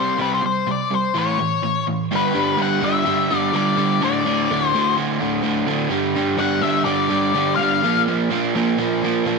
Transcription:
Already playing: overdriven electric guitar C3 G3 C4, lead electric guitar C5
0.18 overdriven electric guitar C3 G3 C4, lead electric guitar B4
0.34 lead electric guitar C5
0.42 overdriven electric guitar C3 G3, lead electric guitar C5
0.67 overdriven electric guitar C3 G3
0.71 lead electric guitar D5
0.91 overdriven electric guitar C3 G3, lead electric guitar C5
1.15 overdriven electric guitar A2 E3 A3, lead electric guitar C#5
1.39 overdriven electric guitar A2 E3
1.62 overdriven electric guitar A2 E3
1.87 overdriven electric guitar A2 E3
2.11 overdriven electric guitar G2 D3 G3
2.16 lead electric guitar B4
2.34 overdriven electric guitar G2 D3 G3
2.57 overdriven electric guitar G2 D3 G3
2.62 lead electric guitar F#5
2.81 overdriven electric guitar G2 D3 G3, lead electric guitar E5
3.05 overdriven electric guitar G2 D3 G3
3.30 overdriven electric guitar G2 D3 G3
3.38 lead electric guitar D5
3.53 overdriven electric guitar G2 D3 G3, lead electric guitar D5
3.77 overdriven electric guitar G2 D3 G3
4.01 overdriven electric guitar D2 A2 D3, lead electric guitar D5
4.25 overdriven electric guitar D2 A2 D3
4.50 overdriven electric guitar D2 A2 D3
4.68 lead electric guitar C5
4.74 overdriven electric guitar D2 A2 D3
4.96 overdriven electric guitar D2 A2 D3
5.20 overdriven electric guitar D2 A2 D3
5.42 overdriven electric guitar D2 A2 D3
5.67 overdriven electric guitar D2 A2 D3
5.89 overdriven electric guitar G2 D3 G3
6.14 overdriven electric guitar G2 D3 G3
6.37 overdriven electric guitar G2 D3 G3, lead electric guitar F#5
6.61 overdriven electric guitar G2 D3 G3, lead electric guitar E5
6.85 overdriven electric guitar G2 D3 G3, lead electric guitar D5
7.08 overdriven electric guitar G2 D3 G3
7.34 overdriven electric guitar G2 D3 G3
7.56 overdriven electric guitar G2 D3 G3, lead electric guitar F5
7.83 overdriven electric guitar A#2 F3 A#3
8.07 overdriven electric guitar A#2 F3 A#3
8.30 overdriven electric guitar A#2 F3 A#3
8.55 overdriven electric guitar A#2 F3 A#3
8.78 overdriven electric guitar A#2 F3 A#3
9.03 overdriven electric guitar A#2 F3 A#3
9.25 overdriven electric guitar A#2 F3 A#3

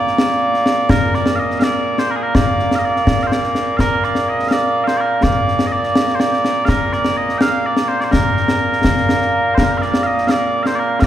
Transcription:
Already playing: bagpipes A#2 A#3 D5
0.07 snare
0.18 snare
0.30 snare
0.54 snare
0.66 snare
0.89 bagpipes A#4, concert bass drum, snare
1.14 bagpipes D5, snare
1.26 snare
1.35 bagpipes D#5 F5
1.51 snare
1.60 bagpipes D5 F5, snare
1.98 bagpipes C5, snare
2.11 bagpipes A#4
2.16 bagpipes G#4
2.22 bagpipes A#4
2.35 bagpipes D5, concert bass drum, snare
2.59 snare
2.71 snare
2.75 bagpipes D#5 F5
2.85 bagpipes D5
2.96 snare
3.07 concert bass drum, snare
3.20 bagpipes F5, snare
3.27 bagpipes C5
3.32 bagpipes D5, snare
3.43 snare
3.55 snare
3.77 bagpipes A#4 F5, concert bass drum, snare
4.03 bagpipes D5, snare
4.15 snare
4.29 bagpipes D#5
4.39 snare
4.48 bagpipes F5, snare
4.52 bagpipes D5
4.84 bagpipes C5 F5, snare
4.97 bagpipes A#4 D5
5.23 bagpipes D5, concert bass drum, snare
5.48 snare
5.59 snare
5.66 bagpipes D#5
5.72 bagpipes D5
5.83 snare
5.96 snare
6.08 snare
6.15 bagpipes C5
6.20 bagpipes D5, snare
6.33 snare
6.45 snare
6.65 bagpipes F5, concert bass drum, snare
6.69 bagpipes A#4
6.92 bagpipes D5, snare
7.04 snare
7.17 bagpipes D#5
7.29 snare
7.38 bagpipes F5 G5, snare
7.66 bagpipes D5
7.77 snare
7.88 bagpipes C5
8.01 bagpipes C5 D5, snare
8.12 bagpipes A#4, concert bass drum, snare
8.37 snare
8.48 snare
8.73 snare
8.84 concert bass drum, snare
8.97 snare
9.09 snare
9.21 snare
9.55 bagpipes A#4 C5, concert bass drum, snare
9.78 bagpipes D5 F5
9.82 snare
9.94 snare
10.03 bagpipes D#5 F5
10.18 snare
10.28 bagpipes D5 F5, snare
10.63 bagpipes C5 F5, snare
10.75 bagpipes D5
10.79 bagpipes A#4
11.00 bagpipes D5 F5, concert bass drum, snare

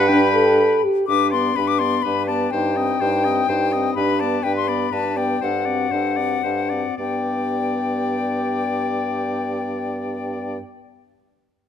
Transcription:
Already playing: bassoon G2, oboe B4, clarinet F#5
0.08 french horn D4, clarinet G5, flute B5
0.34 french horn A4
0.84 french horn G4
1.07 bassoon G2, french horn D4, clarinet G4, oboe B4, flute D6
1.31 french horn B3, clarinet B4, oboe D5, flute C6
1.56 bassoon G2, french horn D4, clarinet G4, oboe B4, flute B5
1.68 flute D6
1.79 french horn B3, clarinet B4, oboe D5, flute C6
2.02 bassoon G2, french horn D4, clarinet G4, oboe B4, flute B5
2.26 french horn B3, clarinet B4, oboe D5, flute A5
2.51 bassoon G2, french horn D#4, clarinet G4, oboe C5, flute G5
2.77 french horn C4, clarinet D#4, oboe D#5
3.01 bassoon G2, french horn D#4, clarinet G4, oboe C5
3.24 french horn C4, clarinet D#4, oboe D#5
3.49 bassoon G2, french horn D#4, clarinet G4, oboe C5
3.73 french horn C4, clarinet D#4, oboe D#5
3.95 bassoon G2, french horn D4, clarinet G4, oboe B4, flute B5
4.20 french horn B3, clarinet B4, oboe D5, flute A5
4.43 bassoon G2, french horn D4, clarinet G4, oboe B4, flute G5
4.57 flute C6
4.68 french horn B3, clarinet B4, oboe D5, flute B5
4.92 bassoon G2, french horn D4, clarinet G4, oboe B4, flute A5
5.17 french horn B3, clarinet B4, oboe D5, flute G5
5.41 bassoon G2, french horn D4, clarinet A4, oboe C5, flute F#5
5.65 french horn C4, clarinet F#4, oboe D5
5.92 bassoon G2, french horn D4, clarinet A4, oboe C5
6.17 french horn C4, clarinet F#4, oboe D5
6.43 bassoon G2, french horn D4, clarinet A4, oboe C5
6.70 french horn C4, clarinet F#4, oboe D5
6.97 bassoon G2, french horn B3, clarinet G4, oboe D5, flute G5

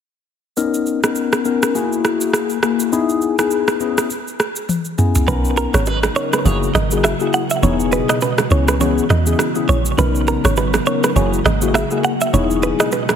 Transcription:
0.57 tine electric piano B3 C#4 D#4 A#4, shaker
0.74 shaker
0.86 shaker
1.03 tine electric piano B3 C#4 D#4 A#4, cross-stick, shaker
1.15 shaker
1.33 cross-stick, shaker
1.45 tine electric piano B3 C#4 D#4 A#4, shaker
1.63 cross-stick, shaker
1.74 tine electric piano A#3 E4 F#4 G#4, shaker
1.93 shaker
2.05 cross-stick, shaker
2.21 shaker
2.33 cross-stick, shaker
2.50 shaker
2.63 tine electric piano A#3 E4 F#4 G#4, cross-stick, shaker
2.80 shaker
2.92 tine electric piano B3 D#4 E4 G#4, shaker
3.09 shaker
3.22 shaker
3.39 tine electric piano B3 D#4 E4 G#4, cross-stick, shaker
3.51 shaker
3.68 cross-stick, shaker
3.80 tine electric piano B3 C#4 E4 G#4, shaker
3.98 cross-stick, shaker
4.10 shaker
4.28 shaker
4.40 cross-stick, shaker
4.56 shaker
4.69 high tom, shaker
4.85 shaker
4.98 tine electric piano B3 C#4 E4 G#4, mid tom, shaker
5.15 floor tom, shaker
5.27 log drum bass B1, ambient pad C#3 F#3 B3 D#4 A#4, tine electric piano B3 C#4 D#4 A#4, clean electric guitar B4, low conga, shaker
5.45 shaker
5.57 clean electric guitar A#4, high bongo, shaker
5.74 log drum bass G#1, clean electric guitar C#5, cross-stick, shaker
5.86 clean electric guitar B4, high bongo, shaker
6.03 cross-stick, low bongo, shaker
6.16 tine electric piano B3 C#4 D#4 A#4, clean electric guitar C#5, shaker
6.33 clean electric guitar B4, cross-stick, low bongo, shaker
6.45 log drum bass F#1, ambient pad G#3 F#4, tine electric piano A#3 E4 F#4 G#4, clean electric guitar C#5, low conga, shaker
6.63 shaker
6.75 log drum bass G#1, clean electric guitar D#5, cross-stick, low bongo, low conga, shaker
6.91 tine electric piano A#3 E4 F#4 G#4, shaker
7.04 clean electric guitar E5, cross-stick, high bongo, low bongo, shaker
7.20 tine electric piano A#3 E4 F#4 G#4, shaker
7.33 clean electric guitar F#5, shaker
7.50 clean electric guitar E5, shaker
7.62 log drum bass E1, ambient pad B2 E3 D#5, tine electric piano B3 D#4 E4 G#4, clean electric guitar C#5, low conga, shaker
7.80 shaker
7.92 clean electric guitar B4, high bongo, shaker
8.09 clean electric guitar D#5, cross-stick, shaker
8.21 clean electric guitar B4, high bongo, shaker
8.38 cross-stick, low bongo, shaker
8.51 log drum bass C#2, ambient pad C#3 E3 B3, tine electric piano B3 C#4 E4 G#4, clean electric guitar C#5, shaker
8.68 clean electric guitar B4, cross-stick, low bongo, shaker
8.80 tine electric piano B3 C#4 E4 G#4, clean electric guitar C#5, low conga, shaker
8.98 shaker
9.10 log drum bass E2, clean electric guitar D#5, cross-stick, low bongo, low conga, shaker
9.26 tine electric piano B3 C#4 E4 G#4, shaker
9.39 cross-stick, high bongo, low bongo, shaker
9.55 tine electric piano B3 C#4 E4 G#4, shaker
9.69 log drum bass A#1, clean electric guitar C#5, shaker
9.86 shaker
9.98 log drum bass B1, ambient pad F#3 B3 D#4 A#4, tine electric piano B3 C#4 D#4 A#4, clean electric guitar B4, low conga, shaker
10.15 shaker
10.27 clean electric guitar A#4, high bongo, shaker
10.44 log drum bass G#1, clean electric guitar C#5, cross-stick, shaker
10.56 clean electric guitar B4, high bongo, shaker
10.74 cross-stick, low bongo, shaker
10.86 tine electric piano B3 C#4 D#4 A#4, clean electric guitar C#5, shaker
11.04 clean electric guitar B4, cross-stick, low bongo, shaker
11.15 log drum bass F#1, ambient pad F#3 G#3 A#3 F#4, tine electric piano A#3 E4 F#4 G#4, clean electric guitar C#5, low conga, shaker
11.33 shaker
11.45 log drum bass G#1, clean electric guitar D#5, cross-stick, low bongo, low conga, shaker
11.62 tine electric piano A#3 E4 F#4 G#4, shaker
11.74 clean electric guitar E5, cross-stick, high bongo, low bongo, shaker
11.91 tine electric piano A#3 E4 F#4 G#4, shaker
12.04 clean electric guitar F#5, shaker
12.21 clean electric guitar E5, shaker
12.33 log drum bass E1, ambient pad B2 E3 D#5, tine electric piano B3 D#4 E4 G#4, clean electric guitar C#5, low conga, shaker
12.51 shaker
12.63 clean electric guitar B4, high bongo, shaker
12.80 clean electric guitar D#5, cross-stick, shaker
12.92 clean electric guitar B4, high bongo, shaker
13.09 cross-stick, low bongo, shaker

